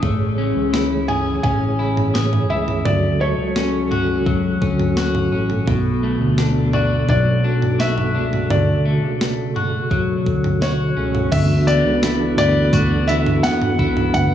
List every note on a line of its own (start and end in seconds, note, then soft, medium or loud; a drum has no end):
0.00 0.53 A1 loud
0.00 5.63 C#3 medium
0.00 2.82 E3 medium
0.00 2.82 A3 medium
0.00 3.20 A3 medium
0.00 1.08 G#4 medium
0.00 2.81 G#4 medium
0.00 2.82 C#5 medium
0.00 kick medium
0.00 floor tom loud
0.38 1.43 C#4 medium
0.56 1.40 C#2 medium
0.73 1.78 E4 medium
0.73 snare medium
1.08 2.13 G#4 medium
1.08 1.42 G#5 medium
1.08 floor tom medium
1.43 2.46 A1 loud
1.43 3.20 C#4 medium
1.43 2.53 G#5 medium
1.43 kick medium
1.43 floor tom medium
1.79 2.48 E4 medium
1.97 floor tom medium
2.14 2.92 G#4 medium
2.14 snare medium
2.33 floor tom medium
2.50 2.83 C#2 medium
2.50 2.92 E4 medium
2.50 2.86 E5 medium
2.68 floor tom medium
2.85 3.35 D2 medium
2.85 5.65 F#3 medium
2.85 5.65 A3 medium
2.85 11.28 F#4 medium
2.85 11.28 A4 medium
2.85 3.22 D5 medium
2.85 floor tom loud
3.20 6.03 A3 medium
3.20 3.87 C#5 medium
3.38 4.58 C#2 medium
3.56 4.60 C#4 medium
3.56 snare medium
3.91 4.96 F#4 medium
3.91 floor tom medium
4.26 7.08 F#3 medium
4.26 kick medium
4.26 floor tom medium
4.61 5.29 D2 medium
4.61 5.31 C#4 medium
4.61 kick medium
4.80 floor tom medium
4.97 6.73 F#4 medium
4.97 snare medium
5.15 floor tom medium
5.32 5.66 A1 loud
5.32 5.74 C#4 medium
5.50 floor tom soft
5.67 6.18 B1 loud
5.67 8.50 B2 medium
5.67 11.29 B2 medium
5.67 8.47 A3 medium
5.67 8.48 B3 medium
5.67 kick loud
5.67 floor tom loud
6.03 8.85 A3 medium
6.21 7.05 D2 medium
6.38 7.44 D4 medium
6.38 snare medium
6.73 7.79 F#4 medium
6.73 7.08 D5 medium
6.73 floor tom medium
7.09 8.16 B1 loud
7.09 9.91 F#3 medium
7.09 7.82 D5 medium
7.09 kick medium
7.09 floor tom medium
7.44 8.14 D4 medium
7.62 floor tom medium
7.79 9.55 F#4 medium
7.79 8.46 E5 medium
7.79 snare loud
7.98 floor tom medium
8.15 8.48 C#2 medium
8.15 10.96 D4 medium
8.33 floor tom medium
8.50 9.00 D2 loud
8.50 11.30 C#3 medium
8.50 11.30 A3 medium
8.50 10.58 D5 medium
8.50 floor tom loud
8.85 11.67 A3 medium
9.03 10.23 C#2 medium
9.21 snare loud
9.56 10.61 F#4 medium
9.56 floor tom medium
9.91 12.06 F#3 medium
9.91 kick medium
9.91 floor tom medium
10.26 10.94 D2 medium
10.26 kick medium
10.44 floor tom medium
10.62 12.06 F#4 medium
10.62 11.35 C#5 medium
10.62 snare loud
10.97 11.30 C#2 medium
10.97 11.39 C#4 medium
11.15 floor tom medium
11.32 11.83 D2 loud
11.32 14.34 E3 medium
11.32 14.34 B3 medium
11.32 14.34 D4 medium
11.32 14.34 F#4 medium
11.32 14.12 A4 medium
11.32 11.68 E5 medium
11.32 kick loud
11.32 floor tom loud
11.32 crash loud
11.32 tambourine medium
11.67 12.36 B3 medium
11.67 12.37 D5 medium
11.67 tambourine medium
11.85 12.36 C#2 medium
12.03 13.07 E4 medium
12.03 snare loud
12.03 tambourine medium
12.38 12.71 D2 loud
12.38 13.42 B3 medium
12.38 13.11 D5 loud
12.38 floor tom medium
12.38 tambourine medium
12.73 13.40 D2 loud
12.73 14.34 F#4 medium
12.73 kick medium
12.73 floor tom medium
12.73 tambourine medium
13.08 13.78 E4 medium
13.08 13.45 E5 medium
13.08 tambourine soft
13.26 floor tom medium
13.43 13.80 E2 medium
13.43 14.34 B3 medium
13.43 14.12 F#5 loud
13.43 snare loud
13.43 tambourine medium
13.62 floor tom medium
13.79 14.13 C#2 loud
13.79 14.34 E4 medium
13.79 kick medium
13.97 floor tom medium
14.14 14.34 D2 loud
14.14 14.34 B4 medium
14.14 14.34 F#5 loud
14.14 kick loud
14.14 floor tom loud
14.14 tambourine medium